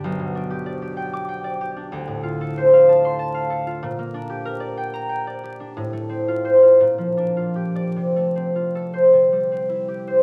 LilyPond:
\new Staff \with { instrumentName = "Harp" } { \time 6/8 \key g \mixolydian \tempo 4. = 62 << { b''4.~ b''16 d'''4~ d'''16~ | \key f \major d'''4.~ d'''16 c'''4~ c'''16 | r4. r16 bes''4~ bes''16 | r4 c''8 r4 r16 d''16 |
r4 r16 c''4. c''16 | } \\ { <b,, d' g' b' d'' g''>16 b,16 d'16 g'16 d''16 g'16 g''8 g''16 d''16 g'16 d'16 | d,16 a,16 f'16 a'16 c''16 f''16 a''8 a''16 f''16 a'16 f'16 | bes,16 bes16 d'16 g'16 bes'16 d''16 g''8 g''16 d''16 g'16 d'16 | a,16 a16 c'16 f'8 f'16 bes,16 f16 d'16 f'16 g'8 |
c16 a16 c'16 f'16 a'8 c16 g16 c'16 e'16 g'8 | } >> }